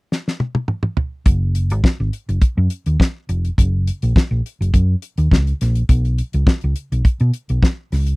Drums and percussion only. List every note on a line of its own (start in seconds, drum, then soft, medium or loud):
0.12 snare medium
0.28 snare medium
0.40 high tom medium
0.55 high tom medium
0.68 mid tom medium
0.83 mid tom medium
0.97 floor tom medium
1.26 kick loud
1.26 closed hi-hat medium
1.55 closed hi-hat medium
1.70 closed hi-hat soft
1.84 kick loud
1.84 snare loud
2.13 closed hi-hat medium
2.29 closed hi-hat soft
2.41 kick loud
2.41 closed hi-hat medium
2.70 closed hi-hat medium
2.86 closed hi-hat soft
3.00 kick loud
3.00 snare loud
3.29 closed hi-hat medium
3.45 closed hi-hat soft
3.58 kick medium
3.58 closed hi-hat medium
3.87 closed hi-hat medium
4.02 closed hi-hat soft
4.16 kick loud
4.16 snare loud
4.46 closed hi-hat medium
4.62 closed hi-hat soft
4.74 kick loud
4.74 closed hi-hat medium
5.02 closed hi-hat medium
5.18 closed hi-hat soft
5.31 kick loud
5.31 snare loud
5.47 closed hi-hat soft
5.61 snare soft
5.61 closed hi-hat medium
5.75 closed hi-hat soft
5.89 kick loud
5.89 closed hi-hat medium
6.05 closed hi-hat soft
6.18 closed hi-hat medium
6.33 closed hi-hat soft
6.47 kick loud
6.47 snare loud
6.61 closed hi-hat soft
6.76 closed hi-hat medium
6.92 closed hi-hat medium
7.05 kick loud
7.05 closed hi-hat medium
7.20 closed hi-hat soft
7.34 closed hi-hat medium
7.49 closed hi-hat soft
7.63 kick loud
7.63 snare loud
7.92 snare soft
7.92 open hi-hat medium
8.07 closed hi-hat soft